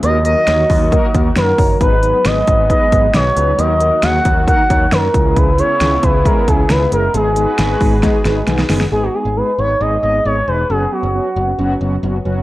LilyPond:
<<
  \new Staff \with { instrumentName = "Analog synth lead" } { \time 4/4 \key gis \minor \tempo 4 = 135 dis''8 dis''2 r8 ais'4 | b'4 dis''4 dis''4 cis''4 | dis''4 fis''4 fis''4 ais'4 | b'8 cis''4 b'8 ais'8 gis'8 b'8 ais'8 |
gis'2. r4 | gis'16 fis'16 gis'8 b'8 cis''8 dis''8 dis''8 cis''8 b'8 | gis'8 fis'2. r8 | }
  \new Staff \with { instrumentName = "Analog polysynth" } { \time 4/4 \key gis \minor <ais dis' fis' ais'>8 <ais dis' fis' ais'>8 <ais dis' fis' cis''>8 <ais dis' fis' ais'>8 <ais dis' fis' ais'>8 <ais dis' fis' ais'>8 <ais dis' fis' ais'>8 <ais dis' fis' cis''>8 | <b dis' gis' b'>8 <b dis' gis' b'>8 <b dis' gis' b'>8 <b dis' gis' b'>8 <b dis' gis' b'>8 <b dis' gis' b'>8 <b dis' gis' b'>8 <b dis' gis' b'>8 | <ais dis' fis' ais'>8 <ais dis' fis' ais'>8 <ais dis' fis' gis'>8 <ais dis' fis' ais'>8 <ais dis' fis' ais'>8 <ais dis' fis' cis''>8 <ais dis' fis' ais'>8 <gis cis' e' gis'>8~ | <gis cis' e' gis'>8 <gis cis' e' gis'>8 <gis cis' e' gis'>8 <gis cis' e' gis'>8 <gis cis' e' gis'>8 <gis cis' e' gis'>8 <gis cis' e' gis'>8 <gis cis' e' gis'>8 |
<gis b dis' gis'>8 <gis b dis' gis'>8 <gis b dis' gis'>8 <gis b dis' gis'>8 <gis b dis' gis'>8 <gis b dis' gis'>8 <gis b dis' gis'>8 <gis b dis' gis'>8 | <gis b dis' gis'>8 <gis b dis' gis'>8 <gis b dis' gis'>8 <gis b dis' b'>8 <gis b dis' gis'>8 <gis b dis' gis'>8 <gis b dis' gis'>8 <gis b dis' gis'>8 | <fis b cis' fis'>8 <fis b cis' fis'>8 <fis b cis' fis'>8 <fis b cis' fis'>8 <fis b cis' fis'>8 <fis b cis' fis'>8 <fis b cis' fis'>8 <fis b cis' fis'>8 | }
  \new Staff \with { instrumentName = "Analog synth pad" } { \time 4/4 \key gis \minor << { <dis fis'>1 | <gis b>1 | <dis fis'>2.~ <dis fis'>8 <cis e'>8~ | <cis e'>1 |
<gis b'>1 | r1 | r1 | } \\ { fis1~ | fis1~ | fis2.~ fis8 b8~ | b1 |
fis'1 | r1 | r1 | } >> }
  \new Staff \with { instrumentName = "Picked electric bass" } { \clef bass \time 4/4 \key gis \minor dis,4 dis,8 dis,8. r16 dis,8 fis,8 fis,,8 | gis,,4 gis,,8 gis,,8. r16 gis,,8 b,,8 cis,8 | dis,4 dis,8 dis,8. r16 dis,8 fis,8 cis,8~ | cis,4 cis,8 cis,8. r16 cis,8 cis,8 fis,,8 |
gis,,4 gis,,8 gis,,8. r16 gis,,8 b,,8 fis,,8 | gis,,8 r16 gis,,8 r16 gis,,8 gis,,8 gis,,8 gis,,8 e,,8 | fis,,8 r16 fis,,8 r16 fis,,8 fis,,8 fis,,8 fis,,8 fis,,8 | }
  \new DrumStaff \with { instrumentName = "Drums" } \drummode { \time 4/4 hh8 hh8 <hh sn>8 <hho bd>8 <hh bd>8 <hh bd>8 <hh sn>8 <hho bd>8 | <hh bd>8 hh8 <hh sn>8 <hh bd>8 <hh bd>8 <hh bd>8 <hh sn>8 hh8 | hh8 hh8 <hh sn>8 <hh bd>8 <hh bd>8 <hh bd>8 <hh sn>8 <hh bd>8 | <hh bd>8 hh8 <hh sn>8 <hh bd>8 <hh bd>8 <hh bd>8 <hh sn>8 hh8 |
hh8 hh8 <hh sn>8 <hho bd>8 <hh bd sn>8 <hh sn>8 <hh sn>16 sn16 <hho sn>16 sn16 | r4 r4 r4 r4 | r4 r4 r4 r4 | }
>>